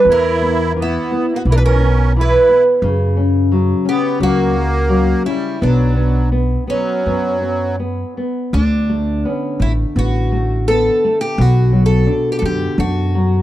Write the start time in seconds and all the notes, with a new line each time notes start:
0.05 E2 E3 E4
0.12 A#4
0.42 B3
0.77 E3 B3
0.82 E4
1.11 B3
1.32 A#3
1.36 F#4
1.45 B1 E3
1.50 D4 E4 A#4
1.58 B4
1.64 C#4 A#4
1.81 B3
2.16 E3 E4
2.21 B4
2.49 B3
2.82 F#2 C#3
3.17 C#4
3.52 F#3
3.85 B3 C#4 G4
4.19 C#2 F#3 A#3 F#4
4.54 C#4
4.89 F#3
5.25 G3 C#4 E4
5.61 B1 F#3 B3 D4
5.96 B3
6.32 B3
6.67 F#3 B3 C#4
7.06 F#2 B3
7.41 B3
7.80 B3
8.17 B3
8.53 D2 D3 D4
8.89 A3
9.25 B3 C#4
9.60 A1 A3 E4
9.96 A1 B3 F#4
10.32 A3
10.68 B3 A4
11.04 A3
11.21 G4
11.38 B1 B2 F#4
11.73 F#3
11.86 A4
12.07 D4
12.32 G4
12.39 F#2 A4
12.43 D3 G4
12.78 F#2 D4 F#4
13.15 F#3